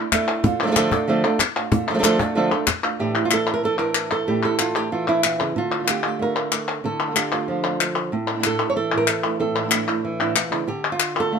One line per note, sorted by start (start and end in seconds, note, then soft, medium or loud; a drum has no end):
0.00 0.11 A3 soft
0.00 0.12 D4 soft
0.00 0.11 E4 soft
0.12 0.43 D3 soft
0.12 0.43 A3 medium
0.12 0.44 A3 soft
0.12 0.44 D4 medium
0.12 0.44 D4 soft
0.12 0.44 E4 soft
0.12 0.44 E4 medium
0.12 0.45 A4 medium
0.12 cajon bass medium
0.12 cajon slap loud
0.12 clap medium
0.44 0.59 D3 medium
0.44 0.60 A3 medium
0.44 0.60 D4 medium
0.44 0.59 F4 medium
0.44 muted nylon-string guitar stroke medium
0.44 cajon bass medium
0.60 0.66 F3 soft
0.60 0.76 A3 soft
0.60 0.66 A3 medium
0.60 0.76 D4 soft
0.60 0.66 D4 soft
0.60 0.76 F4 soft
0.60 0.67 A4 medium
0.67 0.70 F3 medium
0.67 0.71 A3 medium
0.67 0.71 D4 medium
0.67 0.71 A4 medium
0.71 0.75 F3 medium
0.71 0.75 A3 medium
0.71 0.76 D4 medium
0.71 0.76 A4 medium
0.76 0.91 D3 medium
0.76 0.91 F3 medium
0.76 0.92 A3 medium
0.76 0.92 D4 medium
0.76 0.91 A4 medium
0.76 muted nylon-string guitar stroke soft
0.76 cajon slap medium
0.76 clap medium
0.91 1.08 A3 soft
0.91 1.08 D4 soft
0.91 1.07 F4 soft
0.91 1.07 A4 soft
0.91 cajon bass medium
1.07 1.23 D3 medium
1.07 1.23 F3 medium
1.07 1.24 A3 medium
1.07 1.24 D4 medium
1.07 1.23 F4 medium
1.07 1.23 A4 medium
1.07 cajon slap soft
1.24 1.39 A3 soft
1.24 1.40 A3 soft
1.24 1.39 D4 soft
1.24 1.40 D4 medium
1.24 1.39 F4 soft
1.24 1.39 A4 medium
1.39 muted nylon-string guitar stroke soft
1.39 cajon slap medium
1.39 clap medium
1.56 1.71 A3 soft
1.56 1.72 D4 soft
1.56 1.71 F4 soft
1.56 clap soft
1.72 1.87 D3 medium
1.72 1.88 A3 medium
1.72 1.88 D4 medium
1.72 1.86 F4 medium
1.72 muted nylon-string guitar stroke medium
1.72 cajon bass medium
1.87 1.93 F3 soft
1.87 2.03 A3 soft
1.87 1.94 A3 soft
1.87 2.03 D4 soft
1.87 1.94 D4 soft
1.87 2.03 F4 soft
1.87 1.94 A4 soft
1.94 1.98 F3 medium
1.94 1.98 A3 medium
1.94 1.98 D4 medium
1.94 1.99 A4 medium
1.99 2.02 F3 medium
1.99 2.03 A3 medium
1.99 2.03 D4 medium
1.99 2.03 A4 medium
2.03 2.19 D3 medium
2.03 2.19 F3 medium
2.03 2.19 A3 medium
2.03 2.19 D4 medium
2.03 2.18 A4 medium
2.03 muted nylon-string guitar stroke soft
2.03 cajon slap medium
2.03 clap medium
2.19 2.35 A3 soft
2.19 2.35 D4 soft
2.19 2.36 D4 soft
2.19 2.35 F4 soft
2.19 2.35 A4 soft
2.19 cajon bass medium
2.35 2.51 D3 soft
2.35 2.51 D3 medium
2.35 2.51 F3 medium
2.35 2.51 A3 soft
2.35 2.51 A3 medium
2.35 2.52 D4 medium
2.35 2.51 D4 medium
2.35 2.50 F4 medium
2.35 2.50 A4 medium
2.51 2.67 A3 soft
2.51 2.67 D4 soft
2.51 2.67 F4 soft
2.51 2.67 A4 soft
2.67 muted nylon-string guitar stroke soft
2.67 cajon bass medium
2.67 cajon slap loud
2.67 clap medium
2.83 2.99 A3 soft
2.83 2.99 D4 soft
2.83 2.99 F4 soft
2.99 3.15 A2 medium
2.99 4.26 A2 medium
2.99 3.15 D3 soft
2.99 3.62 E3 soft
2.99 3.15 A3 medium
2.99 4.96 D4 soft
2.99 3.15 D4 medium
2.99 3.14 E4 medium
2.99 3.24 G4 medium
3.15 3.30 A3 soft
3.15 3.31 D4 soft
3.15 3.31 E4 soft
3.25 3.32 F4 medium
3.30 3.46 D3 soft
3.30 3.47 A3 soft
3.30 3.47 D4 soft
3.30 3.46 E4 soft
3.30 3.53 A4 medium
3.30 clap medium
3.47 3.63 A3 soft
3.47 3.63 D4 soft
3.47 3.63 E4 soft
3.47 clap soft
3.54 3.64 A#4 medium
3.63 4.92 E3 medium
3.63 3.79 A4 medium
3.63 muted nylon-string guitar stroke soft
3.78 4.28 D4 soft
3.78 4.26 E4 soft
3.78 4.11 A#4 medium
3.95 clap medium
4.12 4.44 A4 medium
4.27 4.42 A2 medium
4.27 5.24 A2 medium
4.27 4.43 D3 medium
4.27 4.43 A3 medium
4.27 4.43 D4 medium
4.27 4.41 E4 medium
4.27 4.59 G4 medium
4.42 4.58 A3 soft
4.42 4.59 D4 soft
4.42 4.58 E4 soft
4.42 4.92 A4 medium
4.58 4.74 D3 soft
4.58 4.75 A3 soft
4.58 4.75 D4 soft
4.58 4.74 E4 soft
4.58 4.76 F4 medium
4.58 clap medium
4.75 4.91 A3 soft
4.75 4.91 D4 soft
4.75 4.91 E4 soft
4.75 4.92 G4 medium
4.92 5.56 E3 medium
4.92 5.08 F4 medium
4.92 muted nylon-string guitar stroke soft
5.07 5.79 A3 soft
5.07 5.59 D4 soft
5.07 5.55 E4 soft
5.07 5.56 E4 medium
5.24 5.40 A#2 medium
5.24 clap medium
5.40 5.55 C#3 medium
5.40 clap soft
5.56 6.82 D3 medium
5.56 5.89 F4 medium
5.56 muted nylon-string guitar stroke medium
5.79 5.82 D3 soft
5.79 5.83 A3 soft
5.79 5.83 D4 soft
5.79 5.84 F4 soft
5.83 5.87 D3 soft
5.83 5.87 A3 soft
5.83 5.87 D4 soft
5.83 5.88 F4 soft
5.88 6.03 D3 soft
5.88 6.03 A3 medium
5.88 6.04 D4 medium
5.88 6.03 F4 medium
5.88 6.37 G4 medium
5.88 clap medium
6.04 6.19 A3 soft
6.04 6.20 D4 soft
6.04 6.19 F4 soft
6.04 6.21 A4 medium
6.19 6.35 D3 medium
6.19 7.19 A3 medium
6.19 6.36 A3 soft
6.19 6.36 D4 medium
6.19 6.35 F4 medium
6.19 6.85 A#4 medium
6.36 6.51 A3 soft
6.36 6.52 D4 soft
6.36 6.51 F4 soft
6.52 muted nylon-string guitar stroke soft
6.52 clap medium
6.84 8.10 D3 medium
6.84 7.15 A4 medium
6.84 muted nylon-string guitar stroke medium
7.07 7.10 D3 soft
7.07 7.10 A3 soft
7.07 7.11 D4 soft
7.07 7.11 F4 soft
7.11 7.15 D3 soft
7.11 7.15 A3 soft
7.11 7.15 D4 soft
7.11 7.16 F4 soft
7.16 7.31 D3 soft
7.16 7.31 A3 soft
7.16 7.32 D4 medium
7.16 7.31 F4 medium
7.16 7.64 G4 medium
7.16 clap medium
7.32 7.48 A3 soft
7.32 7.48 D4 soft
7.32 7.47 F4 soft
7.32 8.13 F4 medium
7.32 clap soft
7.48 7.63 D3 soft
7.48 8.10 F3 medium
7.48 7.64 A3 medium
7.48 7.64 D4 medium
7.48 7.63 F4 medium
7.64 7.80 A3 soft
7.64 7.80 D4 soft
7.64 7.80 F4 soft
7.64 clap soft
7.81 muted nylon-string guitar stroke soft
7.81 clap medium
8.12 9.38 A2 medium
8.12 muted nylon-string guitar stroke medium
8.30 8.33 D3 soft
8.30 8.34 A3 soft
8.30 8.34 D4 soft
8.30 8.35 E4 soft
8.35 8.38 D3 soft
8.35 8.39 A3 soft
8.35 8.39 D4 soft
8.35 8.39 E4 soft
8.39 8.43 D3 soft
8.39 8.43 A3 soft
8.39 8.43 D4 soft
8.39 8.44 E4 soft
8.44 8.59 A2 medium
8.44 8.59 D3 soft
8.44 8.60 A3 medium
8.44 8.60 D4 medium
8.44 8.59 E4 medium
8.44 8.69 A4 medium
8.44 clap medium
8.60 8.92 A3 soft
8.60 8.92 D4 soft
8.60 8.91 E4 soft
8.70 8.76 C#5 medium
8.76 10.03 E3 medium
8.76 8.97 A4 medium
8.92 9.07 A2 medium
8.92 9.07 D3 soft
8.92 9.07 A3 soft
8.92 9.08 D4 medium
8.92 9.08 E4 medium
8.97 9.09 A#4 medium
9.07 9.39 A4 medium
9.07 muted nylon-string guitar stroke soft
9.07 clap medium
9.24 9.40 A3 soft
9.24 9.40 D4 soft
9.24 9.39 E4 soft
9.40 10.35 A2 medium
9.40 10.36 A4 medium
9.40 muted nylon-string guitar stroke medium
9.59 9.62 D3 soft
9.59 9.63 A3 soft
9.59 9.63 D4 soft
9.59 9.63 E4 soft
9.63 9.66 D3 soft
9.63 9.67 A3 soft
9.63 9.67 D4 soft
9.63 9.68 E4 soft
9.68 9.71 D3 soft
9.68 9.72 A3 medium
9.68 9.72 D4 soft
9.68 9.72 E4 medium
9.68 clap medium
9.72 9.87 A2 medium
9.72 9.88 D3 medium
9.72 9.88 A3 medium
9.72 9.88 D4 medium
9.72 9.86 E4 medium
9.87 10.19 A3 soft
9.87 10.20 D4 soft
9.87 10.19 E4 soft
9.87 clap soft
10.05 10.68 E3 medium
10.19 10.34 A2 medium
10.19 10.35 D3 medium
10.19 10.35 A3 medium
10.19 10.36 D4 medium
10.19 10.36 E4 medium
10.36 10.52 A#2 medium
10.36 muted nylon-string guitar stroke soft
10.36 clap medium
10.51 10.67 C#3 medium
10.51 10.68 A3 soft
10.51 10.68 D4 soft
10.51 10.67 E4 soft
10.51 clap soft
10.67 11.39 D3 medium
10.67 10.92 G4 medium
10.67 muted nylon-string guitar stroke medium
10.92 11.39 F4 medium
11.00 clap medium
11.15 11.31 A3 soft
11.15 11.31 D4 soft
11.15 11.31 F4 soft
11.20 11.39 A4 medium
11.31 11.39 D3 medium
11.31 11.39 A3 medium
11.31 11.39 D4 soft
11.31 11.39 F4 medium